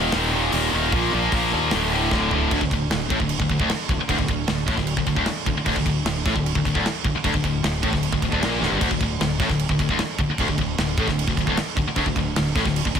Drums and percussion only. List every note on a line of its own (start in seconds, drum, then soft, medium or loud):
0.12 snare loud
0.12 open hi-hat medium
0.52 open hi-hat medium
0.92 kick loud
0.92 open hi-hat medium
1.32 kick medium
1.32 open hi-hat medium
1.71 snare loud
1.71 open hi-hat medium
2.11 kick medium
2.11 snare medium
2.31 floor tom medium
2.51 kick loud
2.51 crash medium
2.61 kick medium
2.71 kick medium
2.71 crash medium
2.91 snare loud
2.91 crash medium
3.10 kick loud
3.10 crash medium
3.20 kick medium
3.29 crash medium
3.40 kick medium
3.49 kick medium
3.49 crash medium
3.60 kick medium
3.69 snare loud
3.69 crash medium
3.89 kick medium
3.89 crash medium
4.09 kick loud
4.09 crash medium
4.19 kick medium
4.28 kick medium
4.28 crash medium
4.48 snare loud
4.48 crash medium
4.68 kick loud
4.68 snare soft
4.68 crash medium
4.77 kick medium
4.77 snare soft
4.87 crash medium
4.97 kick medium
5.06 kick medium
5.06 crash medium
5.16 kick medium
5.26 snare loud
5.26 crash medium
5.46 kick medium
5.46 crash medium
5.66 kick loud
5.66 crash medium
5.76 kick medium
5.86 kick medium
5.86 crash medium
6.06 snare loud
6.06 crash medium
6.26 kick loud
6.26 snare soft
6.26 crash medium
6.36 kick medium
6.46 crash medium
6.55 kick medium
6.65 kick medium
6.65 crash medium
6.75 kick medium
6.86 snare loud
6.86 crash medium
7.04 kick medium
7.04 crash medium
7.24 kick loud
7.24 crash medium
7.34 kick medium
7.44 kick medium
7.44 crash medium
7.64 snare loud
7.64 crash medium
7.83 kick loud
7.83 crash medium
7.93 kick medium
7.93 snare soft
8.03 crash medium
8.12 kick medium
8.22 kick medium
8.22 crash medium
8.32 kick medium
8.43 snare loud
8.43 crash medium
8.63 snare medium
8.81 kick loud
8.81 crash loud
8.91 kick medium
9.01 kick medium
9.01 crash medium
9.21 snare loud
9.21 crash medium
9.40 kick loud
9.40 snare soft
9.40 crash medium
9.49 kick medium
9.49 snare soft
9.59 crash medium
9.69 kick medium
9.79 kick medium
9.79 crash medium
9.89 kick medium
9.99 snare loud
9.99 crash medium
10.19 kick medium
10.19 crash medium
10.38 kick loud
10.38 crash medium
10.48 kick medium
10.58 kick medium
10.58 crash medium
10.78 snare loud
10.78 crash medium
10.98 kick loud
10.98 crash medium
11.08 kick medium
11.08 snare soft
11.19 crash medium
11.28 kick medium
11.37 kick medium
11.37 crash medium
11.47 kick medium
11.57 snare loud
11.57 crash medium
11.77 kick medium
11.77 crash medium
11.96 kick loud
11.96 crash medium
12.06 kick medium
12.16 kick medium
12.16 crash medium
12.36 snare loud
12.36 crash medium
12.56 kick loud
12.56 snare soft
12.56 crash medium
12.66 kick medium
12.66 snare soft
12.76 crash medium
12.85 kick medium
12.95 kick medium
12.95 crash medium